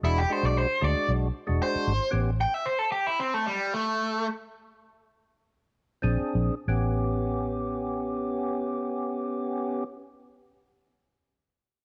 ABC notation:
X:1
M:4/4
L:1/16
Q:"Swing 16ths" 1/4=101
K:Amix
V:1 name="Overdriven electric guitar"
E G =c d c2 d2 z4 c4 | z2 g e =c A G E =C A, G,2 A,4 | z16 | z16 |
z16 |]
V:2 name="Tonewheel organ"
[^G,DF] z [G,DF]3 z [G,DF]4 z [G,DF]4 z | [B,CG] z12 z3 | z12 [=CD_A]3 z | [B,CG]16- |
[B,CG]16 |]
V:3 name="Fingered electric bass" clef=bass
E,,,2 z B,,,2 z D,, z B,,,2 z E,,, z2 ^G,,, z | A,,,3 z12 z | z12 _B,,, z B,,, z | A,,,16- |
A,,,16 |]